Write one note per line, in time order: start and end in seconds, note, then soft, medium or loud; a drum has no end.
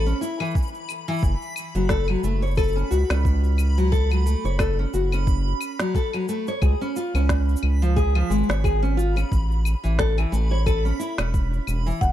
0.00 0.14 A1 medium
0.00 12.03 B5 medium
0.06 0.21 C#4 medium
0.06 shaker soft
0.21 0.38 E4 medium
0.21 shaker medium
0.40 0.54 E3 medium
0.40 claves medium
0.40 shaker soft
0.45 shaker soft
0.51 shaker soft
0.55 kick loud
0.55 shaker soft
0.62 shaker soft
0.67 shaker soft
0.75 shaker soft
0.89 claves medium
0.89 shaker medium
1.08 1.21 E3 medium
1.08 shaker soft
1.11 shaker soft
1.16 shaker soft
1.18 shaker soft
1.21 1.36 F#1 medium
1.21 kick medium
1.21 shaker soft
1.23 shaker soft
1.42 shaker soft
1.56 claves medium
1.56 shaker medium
1.75 2.16 F#1 medium
1.75 1.89 F#3 medium
1.75 shaker soft
1.89 2.07 A4 medium
1.89 kick medium
1.89 snare medium
1.89 shaker soft
2.08 2.22 F#3 medium
2.08 claves medium
2.23 2.84 F#1 medium
2.23 2.41 A3 medium
2.23 shaker medium
2.42 2.56 C#5 medium
2.42 shaker soft
2.47 shaker soft
2.51 shaker soft
2.55 2.74 A4 medium
2.55 kick medium
2.55 claves medium
2.55 shaker soft
2.58 shaker soft
2.63 shaker soft
2.68 shaker soft
2.72 2.90 C#4 medium
2.72 shaker soft
2.77 shaker soft
2.91 3.04 C#2 medium
2.91 3.08 F#4 medium
2.91 shaker medium
3.10 4.35 C#2 medium
3.10 3.76 C#4 medium
3.10 snare medium
3.10 claves medium
3.10 shaker soft
3.25 kick loud
3.25 shaker soft
3.44 shaker soft
3.58 claves medium
3.58 shaker medium
3.78 3.92 F#3 medium
3.78 shaker soft
3.92 4.09 A4 loud
3.92 kick medium
3.92 shaker soft
4.11 4.24 F#3 medium
4.11 claves medium
4.11 shaker soft
4.26 4.43 A3 medium
4.26 shaker medium
4.44 4.86 F#1 medium
4.44 4.58 C#5 medium
4.44 shaker soft
4.59 4.77 A4 medium
4.59 kick medium
4.59 snare medium
4.59 claves medium
4.59 shaker soft
4.79 4.93 C#4 medium
4.94 5.54 F#1 medium
4.94 5.10 F#4 medium
4.94 shaker medium
5.12 5.78 C#4 medium
5.12 claves medium
5.12 shaker soft
5.27 kick medium
5.27 shaker soft
5.61 claves medium
5.61 shaker medium
5.79 5.94 F#3 medium
5.79 snare medium
5.79 shaker soft
5.95 6.12 A4 medium
5.95 kick loud
5.95 shaker soft
6.13 6.27 F#3 medium
6.13 claves medium
6.13 shaker soft
6.29 6.45 A3 medium
6.29 shaker medium
6.47 6.61 C#5 medium
6.47 shaker soft
6.62 6.75 C#2 medium
6.62 6.79 G#4 medium
6.62 kick medium
6.62 claves medium
6.62 shaker soft
6.81 6.95 C#4 medium
6.81 shaker soft
6.96 7.13 F4 medium
6.96 shaker medium
7.14 7.56 C#2 medium
7.14 7.80 C#4 medium
7.14 claves medium
7.14 shaker soft
7.29 kick medium
7.29 snare medium
7.29 shaker soft
7.49 shaker soft
7.56 shaker medium
7.63 8.23 C#2 medium
7.63 claves medium
7.82 7.96 F3 medium
7.82 shaker soft
7.96 8.14 G#4 loud
7.96 kick medium
7.96 shaker soft
8.15 8.29 F3 medium
8.15 claves medium
8.15 shaker soft
8.20 shaker soft
8.26 8.43 G#1 medium
8.26 8.47 G#3 medium
8.26 shaker soft
8.31 shaker medium
8.37 shaker soft
8.43 shaker soft
8.49 9.24 G#1 medium
8.49 8.63 C#5 medium
8.49 snare medium
8.49 shaker soft
8.64 8.81 G#4 medium
8.64 kick loud
8.64 claves medium
8.64 shaker soft
8.82 8.97 C#4 medium
8.82 shaker soft
8.97 9.15 F4 medium
8.97 shaker medium
9.16 9.31 C#4 medium
9.16 claves medium
9.16 shaker soft
9.32 9.75 A1 medium
9.32 kick medium
9.32 shaker soft
9.51 shaker soft
9.65 claves medium
9.65 shaker medium
9.84 10.25 A1 medium
9.84 9.98 E3 medium
9.84 shaker soft
9.99 10.16 A4 medium
9.99 kick medium
9.99 snare medium
9.99 shaker soft
10.18 10.31 E3 medium
10.18 claves medium
10.18 shaker soft
10.32 10.93 A1 medium
10.32 10.49 A3 medium
10.32 shaker medium
10.51 10.65 C#5 medium
10.66 10.83 A4 medium
10.66 kick medium
10.66 claves medium
10.66 shaker soft
10.85 10.99 C#4 medium
10.85 shaker soft
10.99 11.17 E4 medium
10.99 shaker medium
11.18 11.60 E1 medium
11.18 11.84 C#4 medium
11.18 snare medium
11.18 claves medium
11.18 shaker soft
11.34 kick medium
11.34 shaker soft
11.53 shaker soft
11.67 11.92 E1 medium
11.67 claves medium
11.67 shaker medium
11.86 12.01 E3 medium
11.86 shaker soft
11.90 shaker soft
11.93 shaker soft
11.96 shaker soft
11.98 shaker soft
12.00 12.12 F#1 medium
12.00 12.12 F#5 medium
12.00 12.12 C#6 medium
12.00 kick medium
12.00 shaker soft
12.02 shaker soft